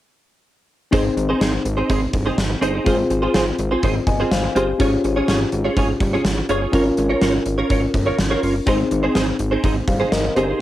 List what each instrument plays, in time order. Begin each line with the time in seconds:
0.91 analog synth bass G#1, tine electric piano C4 D#4 G#4 C5, clean electric guitar C4 D#4 G#4 C5, kick, closed hi-hat
1.05 muted clean electric guitar stroke
1.17 analog synth bass G#1, muted clean electric guitar stroke, closed hi-hat
1.29 clean electric guitar C4 D#4 G#4 C5
1.41 analog synth bass G#1, clean electric guitar C4 D#4 G#4 C5, snare, closed hi-hat
1.53 muted clean electric guitar stroke
1.65 analog synth bass G#1, muted clean electric guitar stroke, closed hi-hat
1.77 clean electric guitar C4 D#4 G#4 C5
1.89 analog synth bass G#1, clean electric guitar C4 D#4 G#4 C5, kick, closed hi-hat
2.01 muted clean electric guitar stroke
2.13 analog synth bass G1, muted clean electric guitar stroke, kick, closed hi-hat
2.26 clean electric guitar C4 D#4 G#4 C5
2.37 analog synth bass G#1, muted clean electric guitar stroke, snare, closed hi-hat
2.50 muted clean electric guitar stroke
2.61 analog synth bass G1, clean electric guitar C4 D#4 G#4 C5, closed hi-hat
2.74 clean electric guitar C4 D#4 G#4 C5
2.84 analog synth bass G#1, tine electric piano C4 F4 G#4 C5, clean electric guitar C4 F4 G#4 C5, kick, closed hi-hat
2.98 muted clean electric guitar stroke
3.10 analog synth bass G#1, muted clean electric guitar stroke, closed hi-hat
3.22 clean electric guitar C4 F4 G#4 C5
3.34 analog synth bass G#1, clean electric guitar C4 F4 G#4 C5, snare, closed hi-hat
3.46 muted clean electric guitar stroke
3.58 analog synth bass G#1, muted clean electric guitar stroke, closed hi-hat
3.71 clean electric guitar C4 F4 G#4 C5
3.83 analog synth bass G#1, clean electric guitar C4 F4 G#4 C5, kick, closed hi-hat
3.95 muted clean electric guitar stroke
4.07 analog synth bass G1, tine electric piano D#5 G#5, muted clean electric guitar stroke, kick, closed hi-hat
4.20 clean electric guitar C4 F4 G#4 C5
4.31 analog synth bass G#1, tine electric piano C5 F5, snare, closed hi-hat
4.43 muted clean electric guitar stroke
4.55 analog synth bass G1, clean electric guitar C4 F4 G#4 C5, tine electric piano G4 C5, closed hi-hat
4.68 muted clean electric guitar stroke
4.78 analog synth bass G#1, tine electric piano C#4 F4 G#4 C#5, clean electric guitar C#4 F4 G#4 C#5, kick, closed hi-hat
4.92 muted clean electric guitar stroke
5.04 analog synth bass G#1, muted clean electric guitar stroke, closed hi-hat
5.16 clean electric guitar C#4 F4 G#4 C#5
5.28 analog synth bass G#1, clean electric guitar C#4 F4 G#4 C#5, snare, closed hi-hat
5.40 muted clean electric guitar stroke
5.52 analog synth bass G#1, muted clean electric guitar stroke, closed hi-hat
5.64 clean electric guitar C#4 F4 G#4 C#5
5.77 analog synth bass G#1, clean electric guitar C#4 F4 G#4 C#5, kick, closed hi-hat
5.89 muted clean electric guitar stroke
6.00 analog synth bass G1, muted clean electric guitar stroke, kick, closed hi-hat
6.13 clean electric guitar C#4 F4 G#4 C#5
6.25 analog synth bass G#1, muted clean electric guitar stroke, snare, closed hi-hat
6.38 muted clean electric guitar stroke
6.49 analog synth bass G1, clean electric guitar C#4 F4 G#4 C#5, closed hi-hat
6.61 clean electric guitar C#4 F4 G#4 C#5
6.72 analog synth bass G#1, tine electric piano C#4 F4 A#4 C#5, clean electric guitar C#4 F4 A#4 C#5, kick, closed hi-hat
6.86 muted clean electric guitar stroke
6.97 analog synth bass G#1, muted clean electric guitar stroke, closed hi-hat
7.09 clean electric guitar C#4 F4 A#4 C#5
7.21 analog synth bass G#1, clean electric guitar C#4 F4 A#4 C#5, snare, closed hi-hat
7.34 muted clean electric guitar stroke
7.46 analog synth bass G#1, muted clean electric guitar stroke, closed hi-hat
7.58 clean electric guitar C#4 F4 A#4 C#5
7.70 analog synth bass G#1, clean electric guitar C#4 F4 A#4 C#5, kick, closed hi-hat
7.81 muted clean electric guitar stroke
7.94 analog synth bass G1, muted clean electric guitar stroke, kick, closed hi-hat
8.06 clean electric guitar C#4 F4 A#4 C#5
8.18 analog synth bass G#1, muted clean electric guitar stroke, snare, closed hi-hat
8.30 clean electric guitar C#4 F4 A#4 C#5
8.42 analog synth bass G1, clean electric guitar C#4 F4 A#4 C#5, open hi-hat
8.55 muted clean electric guitar stroke
8.66 analog synth bass G#1, tine electric piano C4 D#4 G#4 C5, clean electric guitar C4 D#4 G#4 C5, kick, closed hi-hat
8.79 muted clean electric guitar stroke
8.91 analog synth bass G#1, muted clean electric guitar stroke, closed hi-hat
9.03 clean electric guitar C4 D#4 G#4 C5
9.15 analog synth bass G#1, clean electric guitar C4 D#4 G#4 C5, snare, closed hi-hat
9.27 muted clean electric guitar stroke
9.39 analog synth bass G#1, muted clean electric guitar stroke, closed hi-hat
9.51 clean electric guitar C4 D#4 G#4 C5
9.63 analog synth bass G#1, clean electric guitar C4 D#4 G#4 C5, kick, closed hi-hat
9.76 muted clean electric guitar stroke
9.88 analog synth bass G1, tine electric piano C5 F5, muted clean electric guitar stroke, kick, closed hi-hat
10.00 clean electric guitar C4 D#4 G#4 C5
10.12 analog synth bass G#1, tine electric piano A#4 D#5, muted clean electric guitar stroke, snare, closed hi-hat
10.24 muted clean electric guitar stroke
10.35 analog synth bass G1, clean electric guitar C4 D#4 G#4 C5, tine electric piano G4 C5, closed hi-hat
10.48 clean electric guitar C4 D#4 G#4 C5